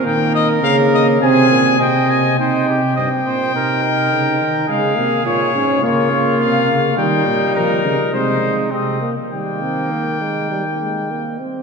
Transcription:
<<
  \new Staff \with { instrumentName = "Trumpet" } { \time 4/4 \key ees \mixolydian \tempo 4 = 103 g''8 ees''8 f''8 ees''8 aes''4 g''8 aes''8 | g''4 g''2. | f''4 des''4 des''4 f''4 | g''4 bes'4 c''4 ees''8 r8 |
g''2.~ g''8 r8 | }
  \new Staff \with { instrumentName = "Trumpet" } { \time 4/4 \key ees \mixolydian bes'2 aes'4 ees''4 | c''8 g'8 ees''8 c''8 bes'8 bes'4. | aes'2 f'2 | ees'2 ees'4 c'8 r8 |
bes2.~ bes8 r8 | }
  \new Staff \with { instrumentName = "Trombone" } { \time 4/4 \key ees \mixolydian bes4 bes4 c'4 c'4 | ees'4 c'4 ees'2 | aes8 bes8 f'8 des'8 bes8 bes4. | g2 aes4 aes8 bes8 |
g8 c'8 bes8 aes8 g8 aes8 bes8 c'8 | }
  \new Staff \with { instrumentName = "Tuba" } { \clef bass \time 4/4 \key ees \mixolydian ees4 des4 c8 bes,8 c4 | c4 g,8 bes,8 c4 des8 ees8 | des8 c8 bes,8 aes,8 des4 c8 des8 | ees8 bes,8 f8 des8 c8 c4 r8 |
ees2.~ ees8 r8 | }
>>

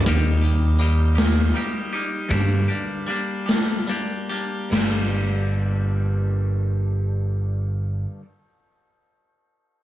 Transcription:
<<
  \new Staff \with { instrumentName = "Clean electric guitar" } { \time 6/8 \key g \minor \tempo 4. = 47 <ees g bes ees' g'>8 <bes ees' g'>8 <g bes ees' g'>8 <bes ees' g'>8 <g bes ees' g'>8 <bes ees' g'>8 | <g, d g bes d' g'>8 <g bes d' g'>8 <g bes d' g'>8 <g bes d' g'>8 <g bes d' g'>8 <g bes d' g'>8 | <g, d g bes d' g'>2.~ | <g, d g bes d' g'>2. | }
  \new Staff \with { instrumentName = "Picked electric bass" } { \clef bass \time 6/8 \key g \minor ees,2 r4 | g,8 r2 r8 | g,,2.~ | g,,2. | }
  \new DrumStaff \with { instrumentName = "Drums" } \drummode { \time 6/8 <hh bd>8 hh8 hh8 <hh sn>8 hh8 hh8 | <hh bd>8 hh8 hh8 <hh sn>8 hh8 hh8 | <cymc sn>4. r4. | r4. r4. | }
>>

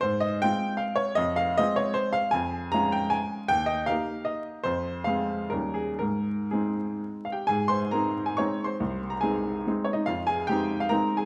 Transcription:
\new Staff \with { instrumentName = "Grand piano" } { \time 3/4 \key f \minor \tempo 4 = 148 << { c''8 ees''8 g''4 f''8 des''8 | ees''8 f''8 ees''8 des''8 c''8 f''8 | \key aes \major aes''4 bes''8 g''8 aes''4 | g''8 ees''8 f''4 ees''8 r8 |
c''4 f''4 bes'8 aes'8 | bes'4 aes'4 \tuplet 3/2 { r8. f''16 <g' g''>8 } | <aes' aes''>8 <c'' c'''>8 <bes' bes''>8. aes''16 \tuplet 3/2 { <des'' des'''>4 <c'' c'''>8~ } | <c'' c'''>8. bes''16 <aes' aes''>4 \tuplet 3/2 { r8. des''16 <ees' ees''>8 } |
<f' f''>8 <aes' aes''>8 <g' g''>8. f''16 \tuplet 3/2 { <bes' bes''>4 <aes' aes''>8 } | } \\ { aes,4 <aes c' f'>2 | f,4 <aes c' f'>2 | f,4 <aes des' f'>2 | ees,4 <bes ees' g'>2 |
f,4 <aes c' aes'>4 <ees, g des' ees'>4 | aes,4 <aes c' ees'>2 | aes,4 <aes c' ees'>4 <aes c' ees'>4 | c,4 <aes c' ees'>4 <aes c' ees'>4 |
f,4 <aes c' ees'>4 <aes c' ees'>4 | } >> }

